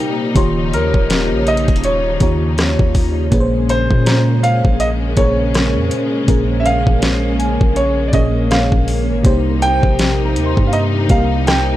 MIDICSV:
0, 0, Header, 1, 7, 480
1, 0, Start_track
1, 0, Tempo, 740741
1, 232, Time_signature, 4, 2, 24, 8
1, 7625, End_track
2, 0, Start_track
2, 0, Title_t, "Celesta"
2, 0, Program_c, 0, 8
2, 236, Note_on_c, 0, 84, 72
2, 1366, Note_off_c, 0, 84, 0
2, 1437, Note_on_c, 0, 82, 53
2, 2369, Note_off_c, 0, 82, 0
2, 2633, Note_on_c, 0, 82, 68
2, 3765, Note_off_c, 0, 82, 0
2, 4790, Note_on_c, 0, 80, 65
2, 5923, Note_off_c, 0, 80, 0
2, 6475, Note_on_c, 0, 79, 53
2, 6643, Note_on_c, 0, 82, 57
2, 6776, Note_on_c, 0, 84, 55
2, 6944, Note_off_c, 0, 82, 0
2, 6952, Note_on_c, 0, 82, 53
2, 7606, Note_off_c, 0, 79, 0
2, 7625, Note_off_c, 0, 82, 0
2, 7625, Note_off_c, 0, 84, 0
2, 7625, End_track
3, 0, Start_track
3, 0, Title_t, "Grand piano"
3, 0, Program_c, 1, 0
3, 0, Note_on_c, 1, 79, 92
3, 108, Note_off_c, 1, 79, 0
3, 479, Note_on_c, 1, 70, 89
3, 958, Note_on_c, 1, 75, 107
3, 970, Note_off_c, 1, 70, 0
3, 1196, Note_on_c, 1, 73, 90
3, 1202, Note_off_c, 1, 75, 0
3, 1888, Note_off_c, 1, 73, 0
3, 2397, Note_on_c, 1, 72, 98
3, 2873, Note_on_c, 1, 77, 113
3, 2889, Note_off_c, 1, 72, 0
3, 3110, Note_on_c, 1, 75, 102
3, 3120, Note_off_c, 1, 77, 0
3, 3165, Note_off_c, 1, 75, 0
3, 3352, Note_on_c, 1, 73, 89
3, 3806, Note_off_c, 1, 73, 0
3, 4276, Note_on_c, 1, 76, 80
3, 4313, Note_off_c, 1, 76, 0
3, 4314, Note_on_c, 1, 77, 116
3, 5032, Note_on_c, 1, 73, 88
3, 5054, Note_off_c, 1, 77, 0
3, 5237, Note_on_c, 1, 74, 66
3, 5240, Note_off_c, 1, 73, 0
3, 5272, Note_on_c, 1, 75, 85
3, 5273, Note_off_c, 1, 74, 0
3, 5514, Note_on_c, 1, 77, 91
3, 5519, Note_off_c, 1, 75, 0
3, 5866, Note_off_c, 1, 77, 0
3, 6236, Note_on_c, 1, 79, 115
3, 6890, Note_off_c, 1, 79, 0
3, 6916, Note_on_c, 1, 77, 65
3, 6953, Note_off_c, 1, 77, 0
3, 6953, Note_on_c, 1, 75, 90
3, 7007, Note_off_c, 1, 75, 0
3, 7195, Note_on_c, 1, 77, 91
3, 7417, Note_off_c, 1, 77, 0
3, 7434, Note_on_c, 1, 79, 95
3, 7625, Note_off_c, 1, 79, 0
3, 7625, End_track
4, 0, Start_track
4, 0, Title_t, "FM electric piano"
4, 0, Program_c, 2, 5
4, 0, Control_c, 2, 64, 127
4, 0, Note_on_c, 2, 48, 81
4, 0, Note_on_c, 2, 58, 75
4, 0, Note_on_c, 2, 63, 74
4, 0, Note_on_c, 2, 67, 70
4, 0, Note_on_c, 2, 70, 89
4, 162, Note_off_c, 2, 48, 0
4, 164, Note_off_c, 2, 58, 0
4, 166, Note_off_c, 2, 63, 0
4, 169, Note_off_c, 2, 67, 0
4, 171, Note_off_c, 2, 70, 0
4, 223, Note_on_c, 2, 51, 84
4, 228, Note_on_c, 2, 58, 81
4, 232, Note_on_c, 2, 65, 78
4, 236, Note_on_c, 2, 67, 79
4, 241, Control_c, 2, 64, 0
4, 241, Note_on_c, 2, 73, 100
4, 369, Control_c, 2, 64, 127
4, 1101, Note_off_c, 2, 51, 0
4, 1103, Note_off_c, 2, 58, 0
4, 1105, Note_off_c, 2, 65, 0
4, 1107, Note_off_c, 2, 67, 0
4, 1110, Note_off_c, 2, 73, 0
4, 1424, Note_on_c, 2, 51, 77
4, 1428, Note_on_c, 2, 58, 72
4, 1433, Note_on_c, 2, 65, 70
4, 1438, Note_on_c, 2, 67, 68
4, 1442, Note_on_c, 2, 73, 86
4, 2083, Note_off_c, 2, 51, 0
4, 2085, Note_off_c, 2, 58, 0
4, 2088, Note_off_c, 2, 65, 0
4, 2090, Note_off_c, 2, 67, 0
4, 2092, Note_off_c, 2, 73, 0
4, 2144, Note_on_c, 2, 46, 88
4, 2149, Note_on_c, 2, 58, 78
4, 2154, Note_on_c, 2, 61, 74
4, 2158, Note_on_c, 2, 68, 77
4, 2161, Control_c, 2, 64, 0
4, 2162, Note_on_c, 2, 71, 74
4, 2205, Note_on_c, 2, 72, 94
4, 2206, Note_off_c, 2, 71, 0
4, 2276, Control_c, 2, 64, 127
4, 3022, Note_off_c, 2, 46, 0
4, 3024, Note_off_c, 2, 58, 0
4, 3026, Note_off_c, 2, 61, 0
4, 3028, Note_off_c, 2, 68, 0
4, 3052, Note_off_c, 2, 72, 0
4, 3341, Note_on_c, 2, 46, 83
4, 3346, Note_on_c, 2, 58, 71
4, 3351, Note_on_c, 2, 61, 70
4, 3355, Note_on_c, 2, 68, 71
4, 3360, Note_on_c, 2, 70, 85
4, 4001, Note_off_c, 2, 46, 0
4, 4004, Note_off_c, 2, 58, 0
4, 4006, Note_off_c, 2, 61, 0
4, 4008, Note_off_c, 2, 68, 0
4, 4011, Note_off_c, 2, 70, 0
4, 4061, Note_on_c, 2, 46, 84
4, 4066, Note_on_c, 2, 58, 73
4, 4071, Note_on_c, 2, 61, 77
4, 4076, Note_on_c, 2, 68, 82
4, 4080, Note_on_c, 2, 70, 89
4, 4940, Note_off_c, 2, 46, 0
4, 4943, Note_off_c, 2, 58, 0
4, 4945, Note_off_c, 2, 61, 0
4, 4947, Note_off_c, 2, 68, 0
4, 4949, Note_off_c, 2, 70, 0
4, 5263, Note_on_c, 2, 46, 83
4, 5268, Note_on_c, 2, 58, 76
4, 5272, Note_on_c, 2, 61, 75
4, 5276, Note_on_c, 2, 68, 75
4, 5282, Note_on_c, 2, 73, 86
4, 5922, Note_off_c, 2, 46, 0
4, 5925, Note_off_c, 2, 58, 0
4, 5927, Note_off_c, 2, 61, 0
4, 5929, Note_off_c, 2, 68, 0
4, 5932, Note_off_c, 2, 73, 0
4, 5982, Note_on_c, 2, 48, 91
4, 5986, Note_on_c, 2, 58, 76
4, 5992, Note_on_c, 2, 63, 79
4, 5995, Note_on_c, 2, 67, 78
4, 6000, Control_c, 2, 64, 0
4, 6001, Note_on_c, 2, 72, 100
4, 6121, Control_c, 2, 64, 127
4, 6860, Note_off_c, 2, 48, 0
4, 6862, Note_off_c, 2, 58, 0
4, 6865, Note_off_c, 2, 63, 0
4, 6867, Note_off_c, 2, 67, 0
4, 6870, Note_off_c, 2, 72, 0
4, 7182, Note_on_c, 2, 48, 76
4, 7186, Note_on_c, 2, 58, 73
4, 7191, Note_on_c, 2, 63, 77
4, 7196, Note_on_c, 2, 67, 72
4, 7200, Note_on_c, 2, 70, 88
4, 7625, Note_off_c, 2, 48, 0
4, 7625, Note_off_c, 2, 58, 0
4, 7625, Note_off_c, 2, 63, 0
4, 7625, Note_off_c, 2, 67, 0
4, 7625, Note_off_c, 2, 70, 0
4, 7625, End_track
5, 0, Start_track
5, 0, Title_t, "String section"
5, 0, Program_c, 3, 48
5, 0, Note_on_c, 3, 46, 78
5, 0, Note_on_c, 3, 55, 76
5, 0, Note_on_c, 3, 58, 73
5, 0, Note_on_c, 3, 63, 89
5, 206, Note_off_c, 3, 46, 0
5, 206, Note_off_c, 3, 58, 0
5, 231, Note_on_c, 3, 53, 72
5, 232, Note_on_c, 3, 49, 81
5, 2126, Note_off_c, 3, 55, 0
5, 2126, Note_off_c, 3, 63, 0
5, 2133, Note_off_c, 3, 49, 0
5, 2133, Note_off_c, 3, 53, 0
5, 2149, Note_on_c, 3, 49, 84
5, 2150, Note_on_c, 3, 56, 72
5, 2150, Note_on_c, 3, 58, 77
5, 2151, Note_on_c, 3, 61, 87
5, 5965, Note_off_c, 3, 49, 0
5, 5965, Note_off_c, 3, 56, 0
5, 5965, Note_off_c, 3, 61, 0
5, 5993, Note_on_c, 3, 48, 81
5, 5993, Note_on_c, 3, 55, 76
5, 5993, Note_on_c, 3, 63, 90
5, 7625, Note_off_c, 3, 48, 0
5, 7625, Note_off_c, 3, 55, 0
5, 7625, Note_off_c, 3, 58, 0
5, 7625, Note_off_c, 3, 63, 0
5, 7625, End_track
6, 0, Start_track
6, 0, Title_t, "808-style bass"
6, 0, Program_c, 4, 38
6, 231, Note_on_c, 4, 27, 110
6, 472, Note_on_c, 4, 39, 95
6, 481, Note_off_c, 4, 27, 0
6, 604, Note_off_c, 4, 39, 0
6, 610, Note_on_c, 4, 27, 101
6, 851, Note_on_c, 4, 34, 98
6, 861, Note_off_c, 4, 27, 0
6, 1079, Note_off_c, 4, 34, 0
6, 1090, Note_on_c, 4, 27, 104
6, 1418, Note_off_c, 4, 27, 0
6, 1431, Note_on_c, 4, 39, 106
6, 1795, Note_off_c, 4, 39, 0
6, 1810, Note_on_c, 4, 39, 98
6, 2138, Note_off_c, 4, 39, 0
6, 2151, Note_on_c, 4, 34, 110
6, 2516, Note_off_c, 4, 34, 0
6, 2531, Note_on_c, 4, 46, 98
6, 2992, Note_off_c, 4, 46, 0
6, 3010, Note_on_c, 4, 34, 98
6, 3338, Note_off_c, 4, 34, 0
6, 3352, Note_on_c, 4, 34, 103
6, 3732, Note_on_c, 4, 41, 101
6, 3741, Note_off_c, 4, 34, 0
6, 3827, Note_off_c, 4, 41, 0
6, 4071, Note_on_c, 4, 34, 119
6, 4435, Note_off_c, 4, 34, 0
6, 4450, Note_on_c, 4, 34, 98
6, 4911, Note_off_c, 4, 34, 0
6, 4930, Note_on_c, 4, 34, 96
6, 5258, Note_off_c, 4, 34, 0
6, 5272, Note_on_c, 4, 34, 106
6, 5636, Note_off_c, 4, 34, 0
6, 5651, Note_on_c, 4, 34, 107
6, 5891, Note_on_c, 4, 32, 102
6, 5901, Note_off_c, 4, 34, 0
6, 5987, Note_off_c, 4, 32, 0
6, 5992, Note_on_c, 4, 36, 114
6, 6356, Note_off_c, 4, 36, 0
6, 6371, Note_on_c, 4, 34, 107
6, 6711, Note_on_c, 4, 39, 104
6, 6721, Note_off_c, 4, 34, 0
6, 6844, Note_off_c, 4, 39, 0
6, 6851, Note_on_c, 4, 43, 98
6, 7178, Note_off_c, 4, 43, 0
6, 7192, Note_on_c, 4, 36, 107
6, 7625, Note_off_c, 4, 36, 0
6, 7625, End_track
7, 0, Start_track
7, 0, Title_t, "Drums"
7, 230, Note_on_c, 9, 42, 77
7, 231, Note_on_c, 9, 36, 103
7, 295, Note_off_c, 9, 42, 0
7, 296, Note_off_c, 9, 36, 0
7, 476, Note_on_c, 9, 42, 74
7, 541, Note_off_c, 9, 42, 0
7, 610, Note_on_c, 9, 36, 93
7, 675, Note_off_c, 9, 36, 0
7, 712, Note_on_c, 9, 42, 66
7, 716, Note_on_c, 9, 38, 122
7, 777, Note_off_c, 9, 42, 0
7, 781, Note_off_c, 9, 38, 0
7, 951, Note_on_c, 9, 42, 57
7, 1015, Note_off_c, 9, 42, 0
7, 1019, Note_on_c, 9, 42, 56
7, 1084, Note_off_c, 9, 42, 0
7, 1089, Note_on_c, 9, 42, 58
7, 1090, Note_on_c, 9, 36, 95
7, 1139, Note_off_c, 9, 42, 0
7, 1139, Note_on_c, 9, 42, 59
7, 1155, Note_off_c, 9, 36, 0
7, 1190, Note_off_c, 9, 42, 0
7, 1190, Note_on_c, 9, 42, 74
7, 1254, Note_off_c, 9, 42, 0
7, 1428, Note_on_c, 9, 42, 68
7, 1431, Note_on_c, 9, 36, 96
7, 1493, Note_off_c, 9, 42, 0
7, 1496, Note_off_c, 9, 36, 0
7, 1671, Note_on_c, 9, 42, 62
7, 1676, Note_on_c, 9, 37, 90
7, 1676, Note_on_c, 9, 38, 112
7, 1735, Note_off_c, 9, 42, 0
7, 1741, Note_off_c, 9, 37, 0
7, 1741, Note_off_c, 9, 38, 0
7, 1810, Note_on_c, 9, 36, 95
7, 1875, Note_off_c, 9, 36, 0
7, 1910, Note_on_c, 9, 46, 75
7, 1911, Note_on_c, 9, 36, 93
7, 1974, Note_off_c, 9, 46, 0
7, 1976, Note_off_c, 9, 36, 0
7, 2149, Note_on_c, 9, 42, 74
7, 2151, Note_on_c, 9, 36, 100
7, 2214, Note_off_c, 9, 42, 0
7, 2216, Note_off_c, 9, 36, 0
7, 2393, Note_on_c, 9, 42, 73
7, 2458, Note_off_c, 9, 42, 0
7, 2531, Note_on_c, 9, 36, 93
7, 2596, Note_off_c, 9, 36, 0
7, 2633, Note_on_c, 9, 42, 67
7, 2637, Note_on_c, 9, 38, 113
7, 2698, Note_off_c, 9, 42, 0
7, 2702, Note_off_c, 9, 38, 0
7, 2875, Note_on_c, 9, 42, 63
7, 2940, Note_off_c, 9, 42, 0
7, 3011, Note_on_c, 9, 36, 95
7, 3076, Note_off_c, 9, 36, 0
7, 3110, Note_on_c, 9, 42, 69
7, 3174, Note_off_c, 9, 42, 0
7, 3348, Note_on_c, 9, 42, 68
7, 3352, Note_on_c, 9, 36, 95
7, 3413, Note_off_c, 9, 42, 0
7, 3416, Note_off_c, 9, 36, 0
7, 3593, Note_on_c, 9, 42, 64
7, 3598, Note_on_c, 9, 37, 87
7, 3598, Note_on_c, 9, 38, 108
7, 3657, Note_off_c, 9, 42, 0
7, 3663, Note_off_c, 9, 37, 0
7, 3663, Note_off_c, 9, 38, 0
7, 3831, Note_on_c, 9, 42, 72
7, 3895, Note_off_c, 9, 42, 0
7, 4070, Note_on_c, 9, 42, 77
7, 4071, Note_on_c, 9, 36, 98
7, 4135, Note_off_c, 9, 42, 0
7, 4136, Note_off_c, 9, 36, 0
7, 4313, Note_on_c, 9, 42, 74
7, 4378, Note_off_c, 9, 42, 0
7, 4450, Note_on_c, 9, 36, 96
7, 4515, Note_off_c, 9, 36, 0
7, 4550, Note_on_c, 9, 42, 66
7, 4553, Note_on_c, 9, 38, 121
7, 4614, Note_off_c, 9, 42, 0
7, 4618, Note_off_c, 9, 38, 0
7, 4793, Note_on_c, 9, 42, 62
7, 4858, Note_off_c, 9, 42, 0
7, 4931, Note_on_c, 9, 36, 104
7, 4995, Note_off_c, 9, 36, 0
7, 5029, Note_on_c, 9, 42, 69
7, 5094, Note_off_c, 9, 42, 0
7, 5268, Note_on_c, 9, 42, 68
7, 5271, Note_on_c, 9, 36, 99
7, 5333, Note_off_c, 9, 42, 0
7, 5336, Note_off_c, 9, 36, 0
7, 5513, Note_on_c, 9, 42, 60
7, 5519, Note_on_c, 9, 37, 86
7, 5519, Note_on_c, 9, 38, 104
7, 5578, Note_off_c, 9, 42, 0
7, 5584, Note_off_c, 9, 37, 0
7, 5584, Note_off_c, 9, 38, 0
7, 5651, Note_on_c, 9, 36, 90
7, 5715, Note_off_c, 9, 36, 0
7, 5753, Note_on_c, 9, 46, 77
7, 5818, Note_off_c, 9, 46, 0
7, 5991, Note_on_c, 9, 42, 79
7, 5992, Note_on_c, 9, 36, 100
7, 6056, Note_off_c, 9, 36, 0
7, 6056, Note_off_c, 9, 42, 0
7, 6234, Note_on_c, 9, 42, 73
7, 6299, Note_off_c, 9, 42, 0
7, 6371, Note_on_c, 9, 36, 90
7, 6436, Note_off_c, 9, 36, 0
7, 6473, Note_on_c, 9, 42, 70
7, 6476, Note_on_c, 9, 38, 111
7, 6537, Note_off_c, 9, 42, 0
7, 6541, Note_off_c, 9, 38, 0
7, 6715, Note_on_c, 9, 42, 64
7, 6779, Note_off_c, 9, 42, 0
7, 6851, Note_on_c, 9, 36, 97
7, 6916, Note_off_c, 9, 36, 0
7, 6951, Note_on_c, 9, 42, 71
7, 7016, Note_off_c, 9, 42, 0
7, 7189, Note_on_c, 9, 42, 67
7, 7192, Note_on_c, 9, 36, 99
7, 7254, Note_off_c, 9, 42, 0
7, 7257, Note_off_c, 9, 36, 0
7, 7434, Note_on_c, 9, 42, 65
7, 7440, Note_on_c, 9, 37, 89
7, 7440, Note_on_c, 9, 38, 110
7, 7499, Note_off_c, 9, 42, 0
7, 7504, Note_off_c, 9, 37, 0
7, 7504, Note_off_c, 9, 38, 0
7, 7625, End_track
0, 0, End_of_file